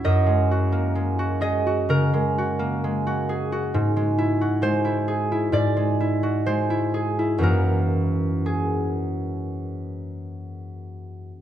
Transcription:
\new Staff \with { instrumentName = "Harp" } { \time 4/4 \key fis \mixolydian \tempo 4 = 64 << { <cis'' dis''>4. dis''8 ais'2 | r4 bis'4 d''4 bis'4 | ais'4 gis'2. | } \\ { <fis, fis cis' fis'>16 gis16 fis'16 ais16 gis16 fis'16 gis'16 fis'16 cis16 gis16 fis'16 ais16 gis16 fis'16 gis'16 fis'16 | gis,16 gis16 e'16 fis'16 gis16 e'16 gis'16 e'16 gis,16 gis16 e'16 fis'16 gis16 e'16 gis'16 e'16 | <fis, e ais fis'>1 | } >> }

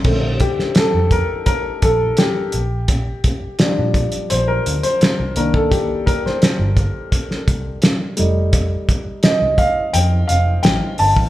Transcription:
<<
  \new Staff \with { instrumentName = "Grand piano" } { \time 4/4 \key bes \major \tempo 4 = 85 r8 g'8 a'8 bes'8 bes'8 a'8 g'4~ | g'4. r8 c''16 bes'8 c''8. bes'16 a'16 | g'8 bes'16 c''4 r2 r16 | r4 ees''8 f''8 g''8 f''8 g''8 a''8 | }
  \new Staff \with { instrumentName = "Grand piano" } { \time 4/4 \key bes \major <d a c'>8 r2. r8 | r4 <f g d'>4. r4 <ees bes d'>8 | r2. r8 <g a ees'>8 | r1 | }
  \new Staff \with { instrumentName = "Fingered electric bass" } { \clef bass \time 4/4 \key bes \major bes,,8. r8 f,8 r8. bes,,8 r8 bes,,8~ | bes,,8 r8. bes,8 r16 bes,,8 d,16 r8 c,16 c,8~ | c,8. r8 g,,8 r8. c,8 r8 f,,8~ | f,,8 r8. c,8 r16 f,8 f,,8 a,,16 r16 g,,16 a,,16 | }
  \new DrumStaff \with { instrumentName = "Drums" } \drummode { \time 4/4 <cymc bd>8 <hh bd>16 sn16 <hh sn>8 <hh bd>8 <hh bd>8 <hh bd>8 <hh sn>8 hh8 | <hh bd>8 <hh bd>8 <hh sn>8 <hh bd>16 hh16 hh8 hh16 hh16 <hh sn>8 hh16 bd16 | <hh bd>8 <hh bd>16 sn16 <hh sn>8 <hh bd>8 <hh bd>16 sn16 <hh bd>8 <hh sn>8 hh8 | <hh bd>8 <hh bd>8 <hh sn>8 <hh bd>8 hh8 hh8 <hh sn>8 hho16 bd16 | }
>>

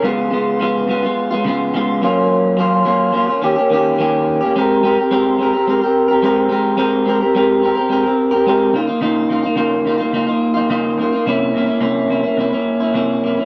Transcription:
\new Staff \with { instrumentName = "Clean electric guitar" } { \time 4/4 \key aes \major \tempo 4 = 107 <des aes ces' f'>8 <des aes ces' f'>8 <des aes ces' f'>8 <des aes ces' f'>16 <aes ces' f'>8 <aes ces' f'>16 <des aes ces' f'>8 <des aes ces' f'>8 <ges bes des' f'>8~ | <ges bes des' f'>8 <ges bes des' f'>8 <ges bes des' f'>8 <ges bes des' f'>16 <bes des' f'>16 <ees bes des' g'>16 <bes des' g'>16 <ees bes des' g'>8 <ees bes des' g'>8. <bes des' g'>16 | <aes c' g' bes'>8 <aes c' g' bes'>16 <c' g' bes'>16 <aes c' g' bes'>8 <aes c' g' bes'>16 <c' g' bes'>16 <aes c' g' bes'>16 <c' g' bes'>8 <c' g' bes'>16 <aes c' g' bes'>8 <aes c' g' bes'>8 | <aes c' g' bes'>8 <aes c' g' bes'>16 <c' g' bes'>16 <aes c' g' bes'>8 <aes c' g' bes'>16 <c' g' bes'>16 <aes c' g' bes'>16 <c' g' bes'>8 <c' g' bes'>16 <aes c' g' bes'>8 <des bes ees' f'>16 <bes ees' f'>16 |
<des bes ees' f'>8 <des bes ees' f'>16 <bes ees' f'>16 <des bes ees' f'>8 <des bes ees' f'>16 <bes ees' f'>16 <des bes ees' f'>16 <bes ees' f'>8 <bes ees' f'>16 <des bes ees' f'>8 <des bes ees' f'>16 <bes ees' f'>16 | <c bes des' e'>8 <c bes des' e'>16 <bes des' e'>16 <c bes des' e'>8 <c bes des' e'>16 <bes des' e'>16 <c bes des' e'>16 <bes des' e'>8 <bes des' e'>16 <c bes des' e'>8 <c bes des' e'>16 <bes des' e'>16 | }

